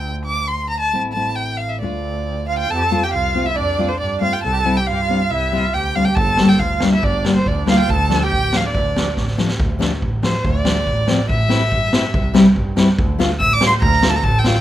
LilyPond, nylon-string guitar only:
\new Staff \with { instrumentName = "Nylon-string guitar" } { \time 2/4 \key d \minor \tempo 4 = 140 <a d' f'>2 | <a c' e'>8 <a c' e'>4. | <a d' f'>2 | r8 <a c' f'>16 r8. <a c' f'>16 r16 |
r8 <a c' f'>16 r8. <a c' f'>16 r16 | r8 <g c' e'>16 r8. <g c' d'>16 r16 | r8 <g c' e'>16 r8. <g c' d'>16 r16 | r8 <g bes d'>16 r8. <g bes d'>16 r16 |
r8 <g bes d'>16 r8. <g bes e'>16 r16 | r8 <f a d'>16 r8. <f a d'>16 r16 | r8 <f a d'>16 r8. <f a d'>16 r16 | r8 <f a d'>16 r8. <f a d'>16 r16 |
r8 <f a d'>16 r8. <f a c'>16 r16 | r8 <a c' e'>16 r8. <a c' e'>16 r16 | r8 <g c' e'>16 r8. <g c' e'>16 r16 | r8 <a d' f'>16 r8. <a d' f'>16 r16 |
r8 <a d' f'>16 r8. <a d' f'>16 r16 | }